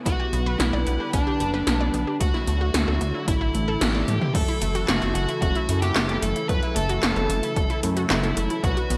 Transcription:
Already playing: B3
0.06 B1 D3 G3 B3 F#4 B4, kick, closed hi-hat
0.20 G4
0.33 B1 B3, closed hi-hat
0.46 B4
0.60 B1 B3 E4, snare, closed hi-hat
0.73 B1 D5
0.87 B1 B3, closed hi-hat
1.00 G4
1.13 B1 B3 D4, kick, closed hi-hat
1.27 G4
1.40 F#1 B3, closed hi-hat
1.54 B4, snare
1.67 B1 B3, snare, closed hi-hat
1.80 D5
1.94 B1 B3, closed hi-hat
2.07 G4
2.20 D2 D3 F#3 A3 E4 F#4, kick, closed hi-hat
2.34 E4, snare
2.47 D2 A3, closed hi-hat
2.61 F#4
2.74 D2 A3, snare, closed hi-hat
2.88 D2 A4
3.01 D2 A3, closed hi-hat
3.14 E4
3.28 A1 E3 A3 E4, kick, closed hi-hat
3.41 E4
3.54 A1 A3, closed hi-hat
3.68 A4
3.81 A1 A3 G4, snare, closed hi-hat
3.95 D5
4.08 A2 A3, closed hi-hat, high tom
4.21 E4, mid tom
4.35 F#1 C#3 E3 F#3 A3 E4 A4, kick, closed hi-hat, crash
4.48 E4, closed hi-hat
4.62 F#1 A3, closed hi-hat
4.75 F#4, closed hi-hat
4.88 F#1 A3 F#4, snare, clap, closed hi-hat
5.02 F#1 A4, closed hi-hat
5.15 F#1 A3 F#4, closed hi-hat
5.29 E4, closed hi-hat
5.42 F#1 A3 F#4, kick, closed hi-hat
5.55 E4, closed hi-hat
5.69 F#2 F#3 A3 E4 A4, closed hi-hat
5.82 F#4 G4, snare, closed hi-hat
5.95 F#1 A3, snare, clap, closed hi-hat
6.09 A4, closed hi-hat
6.22 F#1 A3 A4, closed hi-hat
6.36 E4, closed hi-hat
6.49 F#1 F#3 A3 E4 A4 B4, kick, closed hi-hat
6.63 E4, closed hi-hat
6.76 F#1 A3 A4, closed hi-hat
6.89 F#4, closed hi-hat
7.03 F#1 A3, snare, clap, closed hi-hat
7.16 F#1 A4, closed hi-hat
7.30 F#1 A3, closed hi-hat
7.43 E4, closed hi-hat
7.56 F#1 A3, kick, closed hi-hat
7.70 E4, closed hi-hat
7.83 F#2 F#3 A3 E4 A4, closed hi-hat
7.97 F#4, closed hi-hat
8.10 F#1 A3 E4, snare, clap, closed hi-hat
8.23 A4, closed hi-hat
8.37 F#1 A3, closed hi-hat
8.50 E4, closed hi-hat
8.63 B1 D3 F#3 B3 D4 F#4 B4, kick, closed hi-hat
8.77 F#4, closed hi-hat
8.90 B1 B3, closed hi-hat

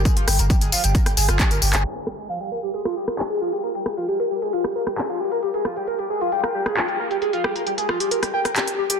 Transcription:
0.05 G#4, kick, closed hi-hat, tambourine
0.17 G1 F4, closed hi-hat
0.28 G1 G4, cross-stick, open hi-hat, tambourine
0.39 G1 A#4, closed hi-hat, tambourine
0.50 G4, kick, closed hi-hat, tambourine
0.61 G1 G#4, closed hi-hat, tambourine
0.72 F4, open hi-hat, tambourine
0.84 G1 G4, closed hi-hat, tambourine
0.95 A#4, kick, closed hi-hat, tambourine
1.06 G1 G4, cross-stick, closed hi-hat, tambourine
1.17 G1 G#4, open hi-hat, tambourine
1.29 G1 F4, cross-stick, closed hi-hat, tambourine
1.40 G4, kick, clap, closed hi-hat, tambourine
1.51 G1 A#4, closed hi-hat, tambourine
1.62 G1 G4, open hi-hat, tambourine
1.73 G1 G#4, clap, closed hi-hat, tambourine
1.84 G4
1.96 A#4
2.07 G4, cross-stick
2.18 G#4, closed hi-hat
2.29 F4, closed hi-hat
2.40 G4, closed hi-hat
2.52 A#4
2.63 G4, closed hi-hat
2.74 G#4, closed hi-hat
2.85 F4, cross-stick, closed hi-hat
2.96 G4
3.08 A#4, cross-stick, closed hi-hat
3.19 G4, clap, closed hi-hat
3.30 G#4, closed hi-hat
3.41 F4
3.52 G4, closed hi-hat
3.63 A#4, closed hi-hat
3.75 G4, closed hi-hat
3.86 G#4, cross-stick
3.97 F4, closed hi-hat
4.08 G4, closed hi-hat
4.20 A#4, closed hi-hat
4.31 G4
4.42 G#4, closed hi-hat
4.53 F4, closed hi-hat
4.64 G4, cross-stick, closed hi-hat
4.76 A#4
4.87 G4, cross-stick, closed hi-hat
4.98 G#4, clap, closed hi-hat
5.09 F4, closed hi-hat
5.20 G4
5.32 A#4, closed hi-hat
5.43 G4, closed hi-hat
5.54 G#4, closed hi-hat
5.65 F4, cross-stick
5.76 G4, closed hi-hat
5.87 A#4, closed hi-hat
5.99 G4, closed hi-hat
6.10 G#4
6.21 F4, closed hi-hat
6.32 G4, closed hi-hat
6.44 A#4, cross-stick, closed hi-hat
6.55 G4
6.66 G#4, cross-stick, closed hi-hat
6.77 F4, clap, closed hi-hat
6.88 G4, closed hi-hat
6.99 A#4
7.11 G4, closed hi-hat
7.22 G#4, closed hi-hat
7.33 F4, closed hi-hat
7.44 G4, cross-stick
7.56 A#4, closed hi-hat
7.67 G4, closed hi-hat
7.78 G#4, closed hi-hat
7.89 F4, cross-stick
8.00 G4, closed hi-hat
8.11 A#4, closed hi-hat
8.23 G4, cross-stick, closed hi-hat
8.34 G5
8.45 A#4, cross-stick, closed hi-hat
8.56 G4, clap, closed hi-hat
8.68 closed hi-hat
8.78 G4
8.90 G4, closed hi-hat

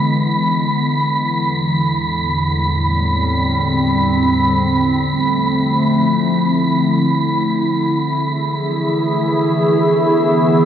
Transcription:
Already playing: D3 E3 G#3 B3 E4 B5
1.35 E2
1.87 A2
2.37 G3
2.71 C4
4.43 D3
4.80 F3
4.87 A3
5.80 E4
7.49 A3 E4
8.13 G#4
8.18 E3
9.59 B3

